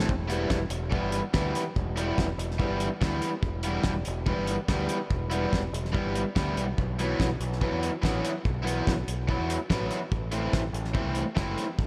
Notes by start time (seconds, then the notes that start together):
0.09 E1, kick
0.28 E3 G3 B3 E4, closed hi-hat
0.50 E1, kick, snare
0.70 E1, closed hi-hat
0.91 E3 G3 B3 E4, kick
1.02 G1
1.12 closed hi-hat
1.34 D2 E3 G3 B3 E4, kick, snare
1.55 snare, closed hi-hat
1.76 E1, kick
1.96 E3 G3 B3 E4, closed hi-hat
2.18 E1, kick, snare
2.38 E1, closed hi-hat
2.51 snare
2.59 E3 G3 B3 E4, kick
2.69 G1
2.80 closed hi-hat
3.01 D2 E3 G3 B3 E4, kick, snare
3.22 closed hi-hat
3.42 E1, kick
3.63 E3 G3 B3 E4, closed hi-hat
3.84 E1, kick, snare
4.05 E1, closed hi-hat
4.26 E3 G3 B3 E4, kick
4.39 G1
4.47 closed hi-hat
4.68 D2 E3 G3 B3 E4, kick, snare
4.89 closed hi-hat
5.10 E1, kick
5.30 E3 G3 B3 E4, closed hi-hat
5.53 E1, kick, snare
5.72 E1, closed hi-hat
5.85 snare
5.92 E3 G3 B3 E4, kick
6.05 G1
6.15 closed hi-hat
6.36 D2 E3 G3 B3 E4, kick, snare
6.56 B1, closed hi-hat
6.78 B1, kick
6.99 E3 F#3 B3 E4, closed hi-hat
7.20 B1, kick, snare
7.40 B1, closed hi-hat
7.53 snare
7.61 E3 F#3 B3 E4, kick
7.71 E2
7.83 closed hi-hat
8.02 A1 E3 F#3 B3 E4, kick, snare
8.25 closed hi-hat
8.45 B1, kick
8.63 E3 F#3 B3 E4
8.67 closed hi-hat
8.87 B1, kick, snare
9.08 B1, closed hi-hat
9.28 E3 F#3 B3 E4, kick
9.39 E2
9.50 closed hi-hat
9.70 A1 E3 F#3 B3 E4, kick, snare
9.91 snare, closed hi-hat
10.12 A1, kick
10.32 E3 A3 C4 E4, closed hi-hat
10.53 A1, kick, snare
10.73 A1, closed hi-hat
10.85 snare
10.94 E3 A3 C4 E4, kick
11.04 C2
11.15 closed hi-hat
11.35 F#1 E3 A3 C4 E4, kick, snare
11.58 snare, closed hi-hat
11.78 A1, kick